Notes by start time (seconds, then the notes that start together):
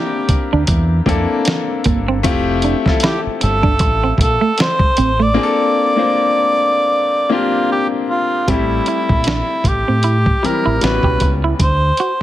Already playing: A#3 C4 D4 E4 G4 A#4
0.29 muted fingered electric bass stroke, muted clean electric guitar stroke, kick, closed hi-hat
0.53 D2 D4
0.67 E2, kick, closed hi-hat
1.06 F2 A#3 C4 D4 E4 A4, kick, closed hi-hat
1.45 muted clean electric guitar stroke, snare, closed hi-hat
1.84 G1 A#3, kick, closed hi-hat
2.08 C4
2.23 F1 A3 C4 E4 F4 G4, kick, closed hi-hat
2.62 D4, closed hi-hat
2.86 A3 C4 E4 F4 A4, kick, snare
3.00 E4, snare, closed hi-hat
3.05 G4
3.26 muted fingered electric bass stroke
3.41 G1 A4, muted clean electric guitar stroke, closed hi-hat
3.63 D4, kick
3.79 A1, kick, closed hi-hat
4.04 C4
4.18 A#1, muted clean electric guitar stroke, kick, closed hi-hat
4.22 A4
4.41 A3
4.58 C5, muted clean electric guitar stroke, snare, closed hi-hat
4.79 kick
4.97 A1 C4, closed hi-hat
5.20 A3 D5
5.34 A#3 C4 D4 F4 G#4
5.43 A4
5.96 A#3 C4 D4 F4 C5
7.29 A#3 C4 D4 F4 G4
7.72 G4
8.10 F4
8.48 A1 G3 A3 C4 E4 G4, kick, closed hi-hat
8.86 E4, closed hi-hat
9.09 A#1, kick
9.24 D4, snare, closed hi-hat
9.64 A1 G4, muted clean electric guitar stroke, kick, closed hi-hat
9.88 A2 C4
10.03 E4, closed hi-hat
10.26 kick
10.43 E3 G3 C4 E4 G4 A#4, muted clean electric guitar stroke, muted fingered electric bass stroke, closed hi-hat
10.66 A1 E4
10.81 A1 G3 B3 C#4 E4 F#4 B4, snare, closed hi-hat
11.03 B1 G4, kick
11.20 C#2, muted clean electric guitar stroke, kick, closed hi-hat
11.44 E4
11.59 D2 C5, kick, closed hi-hat
11.97 F#4, closed hi-hat